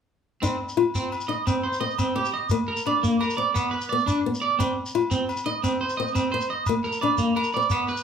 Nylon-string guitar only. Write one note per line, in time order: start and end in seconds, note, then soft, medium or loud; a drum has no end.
0.43 0.71 D#4 medium
0.77 1.05 F4 medium
1.29 1.57 D#4 medium
1.81 2.09 C4 medium
2.16 2.44 C4 medium
2.51 2.79 A#3 medium
2.86 3.14 D4 medium
3.38 3.66 C4 medium
3.92 4.19 B3 medium
4.26 4.53 B3 medium
4.60 muted nylon-string guitar stroke medium
4.95 5.22 F4 medium
5.46 5.74 D#4 medium
6.00 6.27 C4 medium
6.34 6.61 C4 medium
6.69 6.96 A#3 medium
7.03 7.30 D4 medium
7.57 7.83 C4 medium